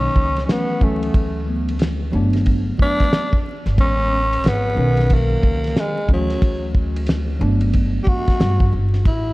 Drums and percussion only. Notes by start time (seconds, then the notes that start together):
0.16 kick
0.36 snare, ride
0.49 snare, hi-hat pedal, ride
0.81 kick
1.03 ride
1.14 kick, ride
1.69 ride
1.79 snare, hi-hat pedal, ride
2.33 snare, ride
2.46 kick, ride
2.79 kick
3.00 kick, snare, ride
3.13 snare, hi-hat pedal, ride
3.33 kick
3.67 snare, ride
3.78 kick, ride
4.33 ride
4.44 snare, hi-hat pedal, ride
4.97 snare, ride
5.10 kick, ride
5.43 kick
5.64 snare, ride
5.76 snare, hi-hat pedal, ride
6.09 kick
6.30 snare, ride
6.42 kick, ride
6.75 kick
6.96 ride
7.07 snare, hi-hat pedal, ride
7.61 ride
7.73 kick, ride
8.07 kick
8.27 kick, snare, ride
8.41 snare, hi-hat pedal, ride
8.60 kick
8.94 snare, ride
9.05 kick, ride